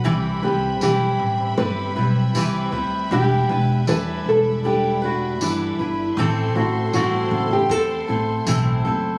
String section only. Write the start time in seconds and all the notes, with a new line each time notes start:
Already playing: B5
0.04 G3 C4 E5
3.10 D5
6.16 A4 C5 C6